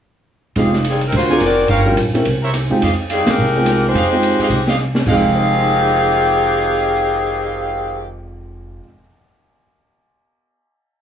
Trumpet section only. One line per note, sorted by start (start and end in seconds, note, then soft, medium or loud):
0.56 0.98 G4 medium
0.56 0.98 G#4 medium
0.56 0.98 D#5 medium
0.56 0.98 F5 medium
1.29 1.67 A#4 medium
1.29 1.67 C5 medium
1.29 1.67 D5 medium
1.29 1.67 G#5 loud
1.69 1.80 G4 medium
1.69 1.81 A#4 medium
1.69 1.81 C#5 medium
1.69 1.80 F5 medium
2.42 2.50 A#4 medium
2.42 2.50 C5 medium
2.42 2.50 C#5 medium
2.42 2.50 E5 medium
2.82 2.93 G4 medium
2.82 2.93 G#4 medium
2.82 2.93 D#5 medium
2.82 2.93 F5 medium
3.09 3.51 G4 medium
3.09 3.51 G#4 medium
3.09 3.51 D#5 medium
3.09 3.51 F5 medium
3.95 4.06 G4 medium
3.95 4.06 G#4 medium
3.95 4.06 D#5 medium
3.95 4.06 F5 medium
4.39 4.47 G4 medium
4.39 4.47 G#4 medium
4.39 4.47 D#5 medium
4.39 4.47 F5 medium
4.67 4.75 G4 medium
4.67 4.75 G#4 medium
4.67 4.75 D#5 medium
4.67 4.75 F5 loud
5.07 8.12 D#5 medium
5.07 8.12 F5 loud